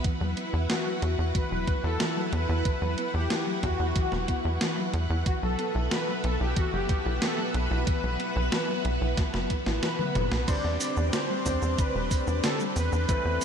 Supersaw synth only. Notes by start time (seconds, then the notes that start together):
0.70 F#4
1.35 B4
1.84 A4
2.33 B4
2.66 B4
3.14 G4
3.64 F#4
5.27 F#4
5.43 A4
5.92 B4
6.24 A4
6.41 G4
6.57 F#4
6.73 G4
7.22 A4
7.55 B4
9.83 B4
10.48 D5
11.13 C5
11.79 B4
12.44 A4
12.76 B4